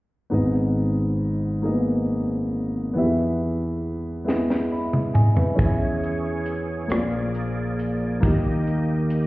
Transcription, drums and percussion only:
4.29 snare soft
4.50 snare soft
4.93 mid tom soft
5.15 mid tom medium
5.37 floor tom medium
5.59 kick medium
5.59 closed hi-hat medium
6.04 closed hi-hat soft
6.46 closed hi-hat medium
6.90 cross-stick medium
6.90 closed hi-hat medium
7.35 closed hi-hat soft
7.79 closed hi-hat medium
8.23 kick medium
8.23 closed hi-hat medium
8.67 closed hi-hat soft
9.10 closed hi-hat medium

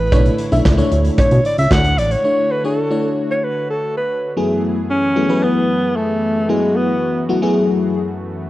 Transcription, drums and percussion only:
0.12 kick loud
0.12 closed hi-hat medium
0.12 cowbell medium
0.25 closed hi-hat soft
0.38 closed hi-hat medium
0.52 closed hi-hat medium
0.65 kick loud
0.65 snare loud
0.65 clap medium
0.65 cowbell medium
0.79 closed hi-hat medium
0.92 closed hi-hat medium
1.05 closed hi-hat medium
1.18 kick loud
1.18 closed hi-hat medium
1.18 cowbell medium
1.31 closed hi-hat soft
1.45 closed hi-hat medium
1.58 closed hi-hat medium
1.71 kick loud
1.71 snare loud
1.71 clap loud
1.71 cowbell medium
1.85 closed hi-hat medium
1.98 closed hi-hat medium
2.11 closed hi-hat soft

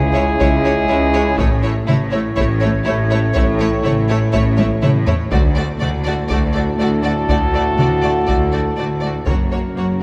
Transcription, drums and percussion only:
0.41 taiko medium
1.39 taiko loud
1.89 taiko mid medium
2.38 taiko medium
3.36 taiko loud
3.85 taiko mid medium
4.34 taiko medium
4.59 taiko high medium
4.83 taiko mid medium
5.07 taiko low loud
5.32 taiko loud
5.82 taiko mid medium
6.31 taiko medium
7.29 taiko medium
7.79 taiko mid medium
8.28 taiko medium
9.27 taiko loud

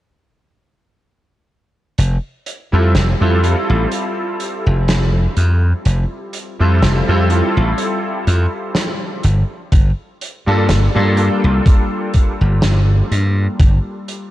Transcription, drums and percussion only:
1.98 closed hi-hat medium
2.46 closed hi-hat medium
2.95 snare loud
2.95 closed hi-hat medium
3.44 closed hi-hat medium
3.92 closed hi-hat medium
4.40 closed hi-hat medium
4.88 snare loud
4.88 closed hi-hat medium
5.37 closed hi-hat medium
5.85 closed hi-hat medium
6.33 closed hi-hat medium
6.82 snare loud
6.82 closed hi-hat medium
7.30 closed hi-hat medium
7.78 closed hi-hat medium
8.27 closed hi-hat medium
8.75 snare loud
8.75 closed hi-hat medium
9.23 closed hi-hat medium
9.72 kick loud
9.72 closed hi-hat medium
10.21 closed hi-hat medium
10.69 snare loud
10.69 closed hi-hat medium
11.17 closed hi-hat medium
11.66 kick loud
11.66 closed hi-hat medium
12.14 kick medium
12.14 closed hi-hat medium
12.62 snare loud
12.62 closed hi-hat medium
13.12 closed hi-hat medium
13.59 kick loud
13.59 closed hi-hat medium
14.08 closed hi-hat medium

